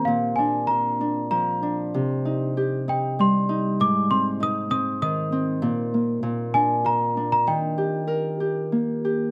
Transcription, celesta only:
\new Staff \with { instrumentName = "Celesta" } { \time 3/4 \key bes \mixolydian \tempo 4 = 97 f''8 aes''8 bes''4 bes''8. r16 | r4. g''8 c'''4 | d'''8 c'''8 ees'''8 ees'''8 ees'''8. r16 | r4. aes''8 bes''8. bes''16 |
g''2 r4 | }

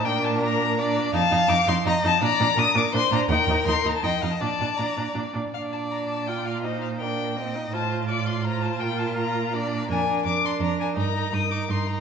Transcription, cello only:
\new Staff \with { instrumentName = "Cello" } { \clef bass \time 3/4 \key bes \major \tempo 4 = 166 bes,2. | f,8 f,8 f,8 f,8 f,8 f,8 | bes,8 bes,8 bes,8 bes,8 bes,8 bes,8 | ees,8 ees,8 ees,8 ees,8 f,8 f,8 |
bes,8 bes,8 bes,8 bes,8 bes,8 bes,8 | bes,2.~ | bes,2. | a,2. |
bes,2. | \key ees \major f,4 f,4 f,4 | g,4 g,4 g,4 | }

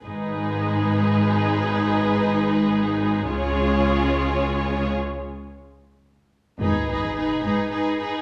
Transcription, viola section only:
\new Staff \with { instrumentName = "Viola section" } { \time 6/8 \key gis \dorian \tempo 4. = 73 <gis dis'>2.~ | <gis dis'>2. | <gis eis'>2. | r2. |
dis'8 dis'8 dis'8 dis'8 dis'8 dis'8 | }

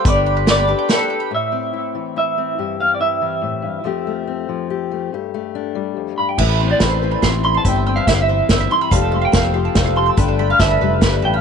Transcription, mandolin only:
\new Staff \with { instrumentName = "Mandolin" } { \time 3/4 \key a \minor \tempo 4 = 142 b'16 g''16 b''16 b'16 g''16 b''16 b'16 g''16 b''16 b'16 g''16 b''16 | r2. | r2. | r2. |
r2. | r16 b''16 c'''16 c''16 b''16 c'''8 b''16 c'''8 b''16 c'''16 | e''16 c'''16 e'''16 e''16 c'''16 e'''16 e''8 e'''16 e''16 c'''16 e'''16 | f''16 a''16 e'''16 f''16 a''16 e'''16 f''16 a''16 e'''16 f''16 a''16 e'''16 |
b'16 a''16 b''16 b'16 a''16 b''16 b'8 b''16 b'16 a''16 b''16 | }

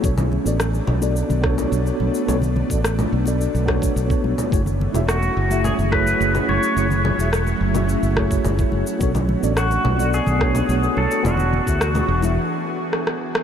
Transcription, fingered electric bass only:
\new Staff \with { instrumentName = "Fingered electric bass" } { \clef bass \time 4/4 \key b \dorian \tempo 4 = 107 b,,8 r16 a,,8 r16 b,,8 r16 b,,8 r16 b,,16 r16 b,,16 r16 | b,,8 r16 a,,8 r16 b,,8 r16 b,,8 r16 b,,16 r16 b,,16 r16 | fis,,8 r16 e,,8 r16 fis,,8 r16 fis,,8 r16 fis,,16 r16 fis,,16 r16 | fis,,8 r16 e,,8 r16 fis,,8 r16 fis,,8 r16 fis,,16 r16 fis,,16 r16 |
b,,8 r16 a,,8 r16 b,,8 r16 b,,8 r16 b,,16 r16 b,,16 r16 | e,,8 r16 d,8 r16 e,,8 r2 | }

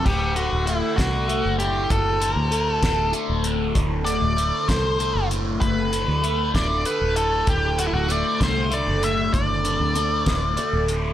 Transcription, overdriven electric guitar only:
\new Staff \with { instrumentName = "Overdriven electric guitar" } { \clef bass \time 6/8 \key d \mixolydian \tempo 4. = 65 d,8 d8 a8 d8 a8 a,8 | d,8 d8 a8 d8 a8 a,8 | d,8 d8 a8 d8 a8 a,8 | d,8 d8 a8 d8 a8 a,8 |
d,8 d8 a8 d8 a8 a,8 | d,8 d8 a8 d8 a8 a,8 | }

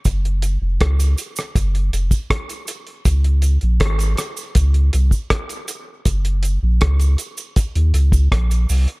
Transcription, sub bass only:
\new Staff \with { instrumentName = "Sub bass" } { \clef bass \time 4/4 \key ges \lydian \tempo 4 = 80 ges,,8. f,,16 des,8 r8 ges,,8 f,,16 r4 r16 | des,8. bes,,16 aes,,8 r8 des,8 c,16 r4 r16 | ges,,8. bes,,16 des,8 r8. ees,16 des,8 bes,,8 c,16 r16 | }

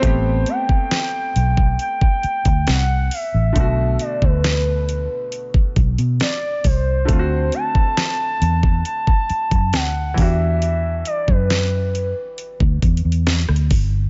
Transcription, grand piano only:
\new Staff \with { instrumentName = "Grand piano" } { \time 4/4 \key a \dorian \tempo 4 = 68 <a b c' g'>1 | <b, d a fis'>1 | <d a c' f' fis'>2.~ <d a c' f' fis'>8 <e d' fis' g'>8~ | <e d' fis' g'>2.~ <e d' fis' g'>8 r8 | }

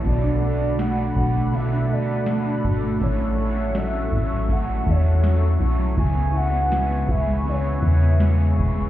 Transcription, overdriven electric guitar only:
\new Staff \with { instrumentName = "Overdriven electric guitar" } { \time 4/4 \key a \major \tempo 4 = 81 <b, fis a d' a'>8 <a d' a'>8 <fis a d' a'>8 <a d' a'>8 <b, fis a d' a'>8 <a d' a'>8 <fis a d' a'>8 <a d' a'>8 | <a, e fis a cis' a'>8 <fis a cis' a'>8 <fis a cis' a'>8 <fis a cis' a'>8 <a, e fis a cis' a'>8 <fis a cis' a'>8 <fis a cis' a'>8 <fis a cis' a'>8 | <cis e b cis' gis'>8 <b cis' gis'>8 <e b cis' gis'>8 <b cis' gis'>8 <cis e b cis' gis'>8 <b cis' gis'>8 <e b cis' gis'>8 <b cis' gis'>8 | }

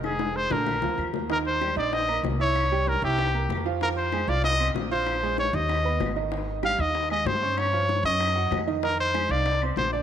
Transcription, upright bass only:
\new Staff \with { instrumentName = "Upright bass" } { \clef bass \time 4/4 \key ees \major \tempo 4 = 191 f,,4. bes,,4 d,8 ees,4~ | ees,4. bes,,4. c,4~ | c,4. c,4. f,4~ | f,4. c,4. bes,,4~ |
bes,,4. ees,4. aes,,4~ | aes,,4. ees,4. g,4~ | g,4. ges,4. f,4~ | f,4. c,4. bes,,4 | }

